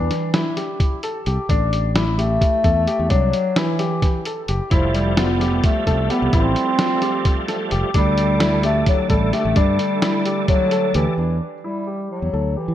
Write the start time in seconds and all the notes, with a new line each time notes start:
Already playing: E3 D4
0.11 snare, closed hi-hat
0.34 E4, snare, closed hi-hat
0.56 G4, snare, closed hi-hat
0.80 kick, closed hi-hat
1.03 A4, closed hi-hat
1.26 C2 G4, closed hi-hat
1.49 A1 D4, kick, closed hi-hat
1.73 closed hi-hat
1.95 E4, snare, closed hi-hat
2.17 A3 G4, closed hi-hat
2.41 kick, closed hi-hat
2.64 E2 A4, kick, closed hi-hat
2.87 G4, closed hi-hat
2.99 E2
3.10 C2 F#3 D4, kick, closed hi-hat
3.33 closed hi-hat
3.56 E3 E4, snare, closed hi-hat
3.79 G4, snare, closed hi-hat
4.02 kick, snare, closed hi-hat
4.25 A4, closed hi-hat
4.48 F#1 G4, closed hi-hat
4.70 F1 F3 G3 A3 E4, kick, closed hi-hat
4.95 G3, closed hi-hat
5.17 B3 F4, snare, closed hi-hat
5.41 G4, snare, closed hi-hat
5.64 A3, kick, closed hi-hat
5.87 C2 A4, kick, closed hi-hat
6.10 B3 G4, closed hi-hat
6.22 C2
6.33 A1 C4 E4, kick, closed hi-hat
6.56 closed hi-hat
6.78 F4, snare, closed hi-hat
7.02 G4, snare, closed hi-hat
7.25 kick, closed hi-hat
7.48 A4, snare, closed hi-hat
7.71 F1 G4, closed hi-hat
7.94 D2 D3 G3 A3 D4, kick, closed hi-hat
8.18 closed hi-hat
8.40 E4, snare, closed hi-hat
8.63 A3 G4, closed hi-hat
8.86 F#3, kick, closed hi-hat
9.09 A1 G3 A4, kick, closed hi-hat
9.33 A3 G4, snare, closed hi-hat
9.45 A1
9.56 G2 G3 D4, kick, closed hi-hat
9.79 closed hi-hat
10.02 E4, snare, closed hi-hat
10.25 G4, closed hi-hat
10.48 F#3, kick, closed hi-hat
10.71 A4, closed hi-hat
10.94 D2 E3 G4, closed hi-hat
11.18 E2 D4
11.64 G3 E4
11.87 G4
12.11 F#3
12.22 E2
12.33 D2 A4
12.56 E3 G4
12.68 E3